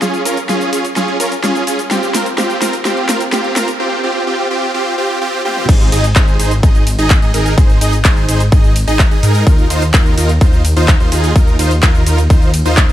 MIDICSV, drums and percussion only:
0, 0, Header, 1, 2, 480
1, 0, Start_track
1, 0, Key_signature, -4, "major"
1, 0, Tempo, 472441
1, 18, Time_signature, 4, 2, 24, 8
1, 13133, End_track
2, 0, Start_track
2, 0, Title_t, "Drums"
2, 19, Note_on_c, 9, 38, 60
2, 19, Note_on_c, 9, 42, 53
2, 25, Note_on_c, 9, 82, 45
2, 121, Note_off_c, 9, 38, 0
2, 121, Note_off_c, 9, 42, 0
2, 127, Note_off_c, 9, 82, 0
2, 139, Note_on_c, 9, 42, 26
2, 145, Note_on_c, 9, 82, 31
2, 240, Note_off_c, 9, 42, 0
2, 246, Note_off_c, 9, 82, 0
2, 259, Note_on_c, 9, 46, 101
2, 265, Note_on_c, 9, 82, 87
2, 361, Note_off_c, 9, 46, 0
2, 366, Note_off_c, 9, 82, 0
2, 379, Note_on_c, 9, 42, 53
2, 385, Note_on_c, 9, 82, 36
2, 480, Note_off_c, 9, 42, 0
2, 486, Note_off_c, 9, 82, 0
2, 499, Note_on_c, 9, 38, 62
2, 499, Note_on_c, 9, 42, 51
2, 505, Note_on_c, 9, 82, 50
2, 601, Note_off_c, 9, 38, 0
2, 601, Note_off_c, 9, 42, 0
2, 607, Note_off_c, 9, 82, 0
2, 619, Note_on_c, 9, 42, 26
2, 625, Note_on_c, 9, 82, 32
2, 721, Note_off_c, 9, 42, 0
2, 727, Note_off_c, 9, 82, 0
2, 739, Note_on_c, 9, 46, 91
2, 745, Note_on_c, 9, 82, 78
2, 841, Note_off_c, 9, 46, 0
2, 847, Note_off_c, 9, 82, 0
2, 859, Note_on_c, 9, 42, 52
2, 865, Note_on_c, 9, 82, 37
2, 961, Note_off_c, 9, 42, 0
2, 966, Note_off_c, 9, 82, 0
2, 979, Note_on_c, 9, 38, 63
2, 979, Note_on_c, 9, 42, 53
2, 985, Note_on_c, 9, 82, 44
2, 1080, Note_off_c, 9, 38, 0
2, 1080, Note_off_c, 9, 42, 0
2, 1086, Note_off_c, 9, 82, 0
2, 1098, Note_on_c, 9, 42, 26
2, 1200, Note_off_c, 9, 42, 0
2, 1219, Note_on_c, 9, 46, 102
2, 1225, Note_on_c, 9, 82, 83
2, 1320, Note_off_c, 9, 46, 0
2, 1326, Note_off_c, 9, 82, 0
2, 1339, Note_on_c, 9, 42, 51
2, 1345, Note_on_c, 9, 82, 32
2, 1440, Note_off_c, 9, 42, 0
2, 1446, Note_off_c, 9, 82, 0
2, 1459, Note_on_c, 9, 38, 75
2, 1459, Note_on_c, 9, 42, 55
2, 1465, Note_on_c, 9, 82, 50
2, 1560, Note_off_c, 9, 38, 0
2, 1560, Note_off_c, 9, 42, 0
2, 1566, Note_off_c, 9, 82, 0
2, 1579, Note_on_c, 9, 42, 26
2, 1585, Note_on_c, 9, 82, 31
2, 1680, Note_off_c, 9, 42, 0
2, 1686, Note_off_c, 9, 82, 0
2, 1698, Note_on_c, 9, 46, 90
2, 1704, Note_on_c, 9, 82, 82
2, 1800, Note_off_c, 9, 46, 0
2, 1806, Note_off_c, 9, 82, 0
2, 1819, Note_on_c, 9, 42, 51
2, 1825, Note_on_c, 9, 82, 34
2, 1921, Note_off_c, 9, 42, 0
2, 1926, Note_off_c, 9, 82, 0
2, 1939, Note_on_c, 9, 38, 75
2, 1939, Note_on_c, 9, 42, 54
2, 1945, Note_on_c, 9, 82, 47
2, 2041, Note_off_c, 9, 38, 0
2, 2041, Note_off_c, 9, 42, 0
2, 2047, Note_off_c, 9, 82, 0
2, 2059, Note_on_c, 9, 42, 28
2, 2065, Note_on_c, 9, 82, 34
2, 2161, Note_off_c, 9, 42, 0
2, 2167, Note_off_c, 9, 82, 0
2, 2179, Note_on_c, 9, 38, 80
2, 2179, Note_on_c, 9, 46, 109
2, 2185, Note_on_c, 9, 82, 88
2, 2280, Note_off_c, 9, 38, 0
2, 2280, Note_off_c, 9, 46, 0
2, 2286, Note_off_c, 9, 82, 0
2, 2299, Note_on_c, 9, 42, 55
2, 2304, Note_on_c, 9, 82, 37
2, 2400, Note_off_c, 9, 42, 0
2, 2406, Note_off_c, 9, 82, 0
2, 2419, Note_on_c, 9, 38, 83
2, 2419, Note_on_c, 9, 42, 56
2, 2425, Note_on_c, 9, 82, 50
2, 2520, Note_off_c, 9, 38, 0
2, 2520, Note_off_c, 9, 42, 0
2, 2526, Note_off_c, 9, 82, 0
2, 2538, Note_on_c, 9, 42, 28
2, 2544, Note_on_c, 9, 82, 33
2, 2640, Note_off_c, 9, 42, 0
2, 2646, Note_off_c, 9, 82, 0
2, 2658, Note_on_c, 9, 38, 82
2, 2658, Note_on_c, 9, 46, 93
2, 2664, Note_on_c, 9, 82, 83
2, 2760, Note_off_c, 9, 38, 0
2, 2760, Note_off_c, 9, 46, 0
2, 2765, Note_off_c, 9, 82, 0
2, 2777, Note_on_c, 9, 42, 57
2, 2783, Note_on_c, 9, 82, 35
2, 2879, Note_off_c, 9, 42, 0
2, 2885, Note_off_c, 9, 82, 0
2, 2897, Note_on_c, 9, 38, 79
2, 2897, Note_on_c, 9, 42, 53
2, 2903, Note_on_c, 9, 82, 47
2, 2999, Note_off_c, 9, 38, 0
2, 2999, Note_off_c, 9, 42, 0
2, 3005, Note_off_c, 9, 82, 0
2, 3018, Note_on_c, 9, 42, 26
2, 3119, Note_off_c, 9, 42, 0
2, 3137, Note_on_c, 9, 38, 87
2, 3137, Note_on_c, 9, 46, 104
2, 3143, Note_on_c, 9, 82, 82
2, 3238, Note_off_c, 9, 38, 0
2, 3238, Note_off_c, 9, 46, 0
2, 3244, Note_off_c, 9, 82, 0
2, 3257, Note_on_c, 9, 42, 55
2, 3263, Note_on_c, 9, 82, 34
2, 3358, Note_off_c, 9, 42, 0
2, 3364, Note_off_c, 9, 82, 0
2, 3378, Note_on_c, 9, 38, 87
2, 3378, Note_on_c, 9, 42, 54
2, 3384, Note_on_c, 9, 82, 47
2, 3479, Note_off_c, 9, 38, 0
2, 3479, Note_off_c, 9, 42, 0
2, 3485, Note_off_c, 9, 82, 0
2, 3498, Note_on_c, 9, 42, 28
2, 3600, Note_off_c, 9, 42, 0
2, 3618, Note_on_c, 9, 38, 88
2, 3618, Note_on_c, 9, 46, 88
2, 3624, Note_on_c, 9, 82, 82
2, 3720, Note_off_c, 9, 38, 0
2, 3720, Note_off_c, 9, 46, 0
2, 3726, Note_off_c, 9, 82, 0
2, 3738, Note_on_c, 9, 42, 54
2, 3744, Note_on_c, 9, 82, 35
2, 3839, Note_off_c, 9, 42, 0
2, 3845, Note_off_c, 9, 82, 0
2, 5538, Note_on_c, 9, 48, 63
2, 5640, Note_off_c, 9, 48, 0
2, 5658, Note_on_c, 9, 47, 72
2, 5760, Note_off_c, 9, 47, 0
2, 5778, Note_on_c, 9, 36, 118
2, 5778, Note_on_c, 9, 42, 54
2, 5778, Note_on_c, 9, 49, 105
2, 5778, Note_on_c, 9, 51, 52
2, 5784, Note_on_c, 9, 82, 47
2, 5880, Note_off_c, 9, 36, 0
2, 5880, Note_off_c, 9, 42, 0
2, 5880, Note_off_c, 9, 49, 0
2, 5880, Note_off_c, 9, 51, 0
2, 5886, Note_off_c, 9, 82, 0
2, 5898, Note_on_c, 9, 42, 28
2, 5904, Note_on_c, 9, 82, 22
2, 6000, Note_off_c, 9, 42, 0
2, 6006, Note_off_c, 9, 82, 0
2, 6018, Note_on_c, 9, 46, 111
2, 6018, Note_on_c, 9, 51, 79
2, 6024, Note_on_c, 9, 82, 82
2, 6119, Note_off_c, 9, 46, 0
2, 6119, Note_off_c, 9, 51, 0
2, 6125, Note_off_c, 9, 82, 0
2, 6138, Note_on_c, 9, 42, 58
2, 6144, Note_on_c, 9, 82, 34
2, 6239, Note_off_c, 9, 42, 0
2, 6245, Note_off_c, 9, 82, 0
2, 6255, Note_on_c, 9, 39, 127
2, 6258, Note_on_c, 9, 36, 116
2, 6258, Note_on_c, 9, 42, 58
2, 6258, Note_on_c, 9, 51, 58
2, 6264, Note_on_c, 9, 82, 45
2, 6357, Note_off_c, 9, 39, 0
2, 6359, Note_off_c, 9, 42, 0
2, 6359, Note_off_c, 9, 51, 0
2, 6360, Note_off_c, 9, 36, 0
2, 6365, Note_off_c, 9, 82, 0
2, 6377, Note_on_c, 9, 42, 28
2, 6383, Note_on_c, 9, 82, 23
2, 6479, Note_off_c, 9, 42, 0
2, 6485, Note_off_c, 9, 82, 0
2, 6498, Note_on_c, 9, 46, 106
2, 6498, Note_on_c, 9, 51, 77
2, 6504, Note_on_c, 9, 82, 83
2, 6599, Note_off_c, 9, 46, 0
2, 6599, Note_off_c, 9, 51, 0
2, 6605, Note_off_c, 9, 82, 0
2, 6618, Note_on_c, 9, 42, 56
2, 6624, Note_on_c, 9, 82, 34
2, 6719, Note_off_c, 9, 42, 0
2, 6725, Note_off_c, 9, 82, 0
2, 6738, Note_on_c, 9, 36, 119
2, 6738, Note_on_c, 9, 42, 53
2, 6738, Note_on_c, 9, 51, 55
2, 6744, Note_on_c, 9, 82, 43
2, 6840, Note_off_c, 9, 36, 0
2, 6840, Note_off_c, 9, 42, 0
2, 6840, Note_off_c, 9, 51, 0
2, 6846, Note_off_c, 9, 82, 0
2, 6858, Note_on_c, 9, 42, 27
2, 6864, Note_on_c, 9, 82, 22
2, 6960, Note_off_c, 9, 42, 0
2, 6966, Note_off_c, 9, 82, 0
2, 6978, Note_on_c, 9, 46, 111
2, 6978, Note_on_c, 9, 51, 75
2, 6984, Note_on_c, 9, 82, 77
2, 7079, Note_off_c, 9, 46, 0
2, 7079, Note_off_c, 9, 51, 0
2, 7085, Note_off_c, 9, 82, 0
2, 7098, Note_on_c, 9, 42, 52
2, 7104, Note_on_c, 9, 82, 32
2, 7199, Note_off_c, 9, 42, 0
2, 7205, Note_off_c, 9, 82, 0
2, 7215, Note_on_c, 9, 39, 127
2, 7218, Note_on_c, 9, 36, 121
2, 7218, Note_on_c, 9, 42, 55
2, 7218, Note_on_c, 9, 51, 56
2, 7224, Note_on_c, 9, 82, 46
2, 7317, Note_off_c, 9, 39, 0
2, 7319, Note_off_c, 9, 42, 0
2, 7319, Note_off_c, 9, 51, 0
2, 7320, Note_off_c, 9, 36, 0
2, 7325, Note_off_c, 9, 82, 0
2, 7338, Note_on_c, 9, 42, 29
2, 7344, Note_on_c, 9, 82, 23
2, 7440, Note_off_c, 9, 42, 0
2, 7445, Note_off_c, 9, 82, 0
2, 7458, Note_on_c, 9, 46, 103
2, 7458, Note_on_c, 9, 51, 73
2, 7464, Note_on_c, 9, 82, 74
2, 7560, Note_off_c, 9, 46, 0
2, 7560, Note_off_c, 9, 51, 0
2, 7566, Note_off_c, 9, 82, 0
2, 7579, Note_on_c, 9, 42, 53
2, 7585, Note_on_c, 9, 82, 34
2, 7680, Note_off_c, 9, 42, 0
2, 7686, Note_off_c, 9, 82, 0
2, 7698, Note_on_c, 9, 36, 127
2, 7698, Note_on_c, 9, 42, 54
2, 7698, Note_on_c, 9, 51, 55
2, 7704, Note_on_c, 9, 82, 43
2, 7799, Note_off_c, 9, 36, 0
2, 7800, Note_off_c, 9, 42, 0
2, 7800, Note_off_c, 9, 51, 0
2, 7806, Note_off_c, 9, 82, 0
2, 7818, Note_on_c, 9, 42, 27
2, 7824, Note_on_c, 9, 82, 22
2, 7920, Note_off_c, 9, 42, 0
2, 7926, Note_off_c, 9, 82, 0
2, 7938, Note_on_c, 9, 46, 114
2, 7938, Note_on_c, 9, 51, 77
2, 7944, Note_on_c, 9, 82, 79
2, 8040, Note_off_c, 9, 46, 0
2, 8040, Note_off_c, 9, 51, 0
2, 8046, Note_off_c, 9, 82, 0
2, 8058, Note_on_c, 9, 42, 53
2, 8064, Note_on_c, 9, 82, 32
2, 8160, Note_off_c, 9, 42, 0
2, 8166, Note_off_c, 9, 82, 0
2, 8175, Note_on_c, 9, 39, 127
2, 8178, Note_on_c, 9, 36, 124
2, 8178, Note_on_c, 9, 42, 57
2, 8178, Note_on_c, 9, 51, 54
2, 8184, Note_on_c, 9, 82, 46
2, 8277, Note_off_c, 9, 39, 0
2, 8279, Note_off_c, 9, 42, 0
2, 8279, Note_off_c, 9, 51, 0
2, 8280, Note_off_c, 9, 36, 0
2, 8285, Note_off_c, 9, 82, 0
2, 8298, Note_on_c, 9, 42, 27
2, 8304, Note_on_c, 9, 82, 21
2, 8399, Note_off_c, 9, 42, 0
2, 8405, Note_off_c, 9, 82, 0
2, 8418, Note_on_c, 9, 46, 111
2, 8418, Note_on_c, 9, 51, 75
2, 8424, Note_on_c, 9, 82, 75
2, 8520, Note_off_c, 9, 46, 0
2, 8520, Note_off_c, 9, 51, 0
2, 8526, Note_off_c, 9, 82, 0
2, 8539, Note_on_c, 9, 42, 56
2, 8544, Note_on_c, 9, 82, 35
2, 8640, Note_off_c, 9, 42, 0
2, 8646, Note_off_c, 9, 82, 0
2, 8658, Note_on_c, 9, 36, 127
2, 8658, Note_on_c, 9, 42, 50
2, 8658, Note_on_c, 9, 51, 56
2, 8664, Note_on_c, 9, 82, 44
2, 8760, Note_off_c, 9, 36, 0
2, 8760, Note_off_c, 9, 42, 0
2, 8760, Note_off_c, 9, 51, 0
2, 8766, Note_off_c, 9, 82, 0
2, 8778, Note_on_c, 9, 42, 27
2, 8784, Note_on_c, 9, 82, 23
2, 8880, Note_off_c, 9, 42, 0
2, 8886, Note_off_c, 9, 82, 0
2, 8898, Note_on_c, 9, 46, 113
2, 8898, Note_on_c, 9, 51, 74
2, 8904, Note_on_c, 9, 82, 77
2, 9000, Note_off_c, 9, 46, 0
2, 9000, Note_off_c, 9, 51, 0
2, 9005, Note_off_c, 9, 82, 0
2, 9018, Note_on_c, 9, 42, 52
2, 9024, Note_on_c, 9, 82, 32
2, 9120, Note_off_c, 9, 42, 0
2, 9126, Note_off_c, 9, 82, 0
2, 9135, Note_on_c, 9, 39, 127
2, 9138, Note_on_c, 9, 36, 123
2, 9138, Note_on_c, 9, 42, 54
2, 9138, Note_on_c, 9, 51, 55
2, 9144, Note_on_c, 9, 82, 47
2, 9237, Note_off_c, 9, 39, 0
2, 9240, Note_off_c, 9, 36, 0
2, 9240, Note_off_c, 9, 42, 0
2, 9240, Note_off_c, 9, 51, 0
2, 9245, Note_off_c, 9, 82, 0
2, 9259, Note_on_c, 9, 42, 26
2, 9265, Note_on_c, 9, 82, 22
2, 9361, Note_off_c, 9, 42, 0
2, 9367, Note_off_c, 9, 82, 0
2, 9378, Note_on_c, 9, 46, 104
2, 9378, Note_on_c, 9, 51, 75
2, 9384, Note_on_c, 9, 82, 75
2, 9480, Note_off_c, 9, 46, 0
2, 9480, Note_off_c, 9, 51, 0
2, 9486, Note_off_c, 9, 82, 0
2, 9499, Note_on_c, 9, 42, 52
2, 9505, Note_on_c, 9, 82, 31
2, 9600, Note_off_c, 9, 42, 0
2, 9606, Note_off_c, 9, 82, 0
2, 9618, Note_on_c, 9, 36, 126
2, 9618, Note_on_c, 9, 42, 52
2, 9618, Note_on_c, 9, 51, 58
2, 9624, Note_on_c, 9, 82, 43
2, 9720, Note_off_c, 9, 36, 0
2, 9720, Note_off_c, 9, 42, 0
2, 9720, Note_off_c, 9, 51, 0
2, 9726, Note_off_c, 9, 82, 0
2, 9738, Note_on_c, 9, 42, 26
2, 9744, Note_on_c, 9, 82, 21
2, 9840, Note_off_c, 9, 42, 0
2, 9846, Note_off_c, 9, 82, 0
2, 9858, Note_on_c, 9, 46, 113
2, 9858, Note_on_c, 9, 51, 78
2, 9864, Note_on_c, 9, 82, 79
2, 9960, Note_off_c, 9, 46, 0
2, 9960, Note_off_c, 9, 51, 0
2, 9966, Note_off_c, 9, 82, 0
2, 9979, Note_on_c, 9, 42, 53
2, 9984, Note_on_c, 9, 82, 34
2, 10080, Note_off_c, 9, 42, 0
2, 10086, Note_off_c, 9, 82, 0
2, 10096, Note_on_c, 9, 39, 126
2, 10098, Note_on_c, 9, 36, 127
2, 10099, Note_on_c, 9, 42, 53
2, 10099, Note_on_c, 9, 51, 57
2, 10105, Note_on_c, 9, 82, 44
2, 10198, Note_off_c, 9, 39, 0
2, 10200, Note_off_c, 9, 36, 0
2, 10200, Note_off_c, 9, 42, 0
2, 10200, Note_off_c, 9, 51, 0
2, 10206, Note_off_c, 9, 82, 0
2, 10219, Note_on_c, 9, 42, 27
2, 10225, Note_on_c, 9, 82, 22
2, 10320, Note_off_c, 9, 42, 0
2, 10326, Note_off_c, 9, 82, 0
2, 10338, Note_on_c, 9, 46, 108
2, 10338, Note_on_c, 9, 51, 80
2, 10344, Note_on_c, 9, 82, 77
2, 10440, Note_off_c, 9, 46, 0
2, 10440, Note_off_c, 9, 51, 0
2, 10446, Note_off_c, 9, 82, 0
2, 10458, Note_on_c, 9, 42, 54
2, 10464, Note_on_c, 9, 82, 33
2, 10560, Note_off_c, 9, 42, 0
2, 10566, Note_off_c, 9, 82, 0
2, 10578, Note_on_c, 9, 36, 127
2, 10578, Note_on_c, 9, 42, 52
2, 10578, Note_on_c, 9, 51, 54
2, 10584, Note_on_c, 9, 82, 43
2, 10679, Note_off_c, 9, 42, 0
2, 10679, Note_off_c, 9, 51, 0
2, 10680, Note_off_c, 9, 36, 0
2, 10685, Note_off_c, 9, 82, 0
2, 10698, Note_on_c, 9, 42, 25
2, 10704, Note_on_c, 9, 82, 22
2, 10799, Note_off_c, 9, 42, 0
2, 10805, Note_off_c, 9, 82, 0
2, 10817, Note_on_c, 9, 46, 111
2, 10817, Note_on_c, 9, 51, 78
2, 10823, Note_on_c, 9, 82, 75
2, 10919, Note_off_c, 9, 46, 0
2, 10919, Note_off_c, 9, 51, 0
2, 10925, Note_off_c, 9, 82, 0
2, 10938, Note_on_c, 9, 42, 51
2, 10944, Note_on_c, 9, 82, 32
2, 11040, Note_off_c, 9, 42, 0
2, 11046, Note_off_c, 9, 82, 0
2, 11056, Note_on_c, 9, 39, 127
2, 11058, Note_on_c, 9, 36, 120
2, 11058, Note_on_c, 9, 42, 53
2, 11058, Note_on_c, 9, 51, 60
2, 11064, Note_on_c, 9, 82, 43
2, 11157, Note_off_c, 9, 39, 0
2, 11160, Note_off_c, 9, 36, 0
2, 11160, Note_off_c, 9, 42, 0
2, 11160, Note_off_c, 9, 51, 0
2, 11166, Note_off_c, 9, 82, 0
2, 11178, Note_on_c, 9, 42, 26
2, 11184, Note_on_c, 9, 82, 22
2, 11280, Note_off_c, 9, 42, 0
2, 11286, Note_off_c, 9, 82, 0
2, 11297, Note_on_c, 9, 46, 116
2, 11297, Note_on_c, 9, 51, 76
2, 11303, Note_on_c, 9, 82, 71
2, 11399, Note_off_c, 9, 46, 0
2, 11399, Note_off_c, 9, 51, 0
2, 11405, Note_off_c, 9, 82, 0
2, 11417, Note_on_c, 9, 42, 54
2, 11423, Note_on_c, 9, 82, 33
2, 11519, Note_off_c, 9, 42, 0
2, 11525, Note_off_c, 9, 82, 0
2, 11537, Note_on_c, 9, 42, 50
2, 11537, Note_on_c, 9, 51, 57
2, 11538, Note_on_c, 9, 36, 124
2, 11543, Note_on_c, 9, 82, 46
2, 11639, Note_off_c, 9, 42, 0
2, 11639, Note_off_c, 9, 51, 0
2, 11640, Note_off_c, 9, 36, 0
2, 11645, Note_off_c, 9, 82, 0
2, 11658, Note_on_c, 9, 42, 25
2, 11664, Note_on_c, 9, 82, 22
2, 11759, Note_off_c, 9, 42, 0
2, 11765, Note_off_c, 9, 82, 0
2, 11777, Note_on_c, 9, 46, 117
2, 11777, Note_on_c, 9, 51, 80
2, 11783, Note_on_c, 9, 82, 80
2, 11879, Note_off_c, 9, 46, 0
2, 11879, Note_off_c, 9, 51, 0
2, 11885, Note_off_c, 9, 82, 0
2, 11898, Note_on_c, 9, 42, 52
2, 11903, Note_on_c, 9, 82, 35
2, 11999, Note_off_c, 9, 42, 0
2, 12005, Note_off_c, 9, 82, 0
2, 12015, Note_on_c, 9, 39, 120
2, 12017, Note_on_c, 9, 42, 52
2, 12017, Note_on_c, 9, 51, 60
2, 12018, Note_on_c, 9, 36, 121
2, 12023, Note_on_c, 9, 82, 44
2, 12117, Note_off_c, 9, 39, 0
2, 12119, Note_off_c, 9, 42, 0
2, 12119, Note_off_c, 9, 51, 0
2, 12120, Note_off_c, 9, 36, 0
2, 12125, Note_off_c, 9, 82, 0
2, 12138, Note_on_c, 9, 42, 26
2, 12143, Note_on_c, 9, 82, 23
2, 12239, Note_off_c, 9, 42, 0
2, 12245, Note_off_c, 9, 82, 0
2, 12258, Note_on_c, 9, 46, 108
2, 12258, Note_on_c, 9, 51, 80
2, 12264, Note_on_c, 9, 82, 73
2, 12359, Note_off_c, 9, 46, 0
2, 12359, Note_off_c, 9, 51, 0
2, 12365, Note_off_c, 9, 82, 0
2, 12378, Note_on_c, 9, 42, 49
2, 12384, Note_on_c, 9, 82, 33
2, 12480, Note_off_c, 9, 42, 0
2, 12486, Note_off_c, 9, 82, 0
2, 12498, Note_on_c, 9, 36, 126
2, 12498, Note_on_c, 9, 42, 51
2, 12498, Note_on_c, 9, 51, 57
2, 12504, Note_on_c, 9, 82, 43
2, 12600, Note_off_c, 9, 36, 0
2, 12600, Note_off_c, 9, 42, 0
2, 12600, Note_off_c, 9, 51, 0
2, 12606, Note_off_c, 9, 82, 0
2, 12618, Note_on_c, 9, 42, 26
2, 12624, Note_on_c, 9, 82, 21
2, 12720, Note_off_c, 9, 42, 0
2, 12726, Note_off_c, 9, 82, 0
2, 12737, Note_on_c, 9, 46, 110
2, 12737, Note_on_c, 9, 51, 82
2, 12743, Note_on_c, 9, 82, 81
2, 12839, Note_off_c, 9, 46, 0
2, 12839, Note_off_c, 9, 51, 0
2, 12845, Note_off_c, 9, 82, 0
2, 12858, Note_on_c, 9, 42, 47
2, 12864, Note_on_c, 9, 82, 31
2, 12960, Note_off_c, 9, 42, 0
2, 12966, Note_off_c, 9, 82, 0
2, 12975, Note_on_c, 9, 39, 123
2, 12977, Note_on_c, 9, 42, 54
2, 12977, Note_on_c, 9, 51, 58
2, 12978, Note_on_c, 9, 36, 125
2, 12983, Note_on_c, 9, 82, 46
2, 13077, Note_off_c, 9, 39, 0
2, 13079, Note_off_c, 9, 42, 0
2, 13079, Note_off_c, 9, 51, 0
2, 13080, Note_off_c, 9, 36, 0
2, 13085, Note_off_c, 9, 82, 0
2, 13098, Note_on_c, 9, 42, 25
2, 13133, Note_off_c, 9, 42, 0
2, 13133, End_track
0, 0, End_of_file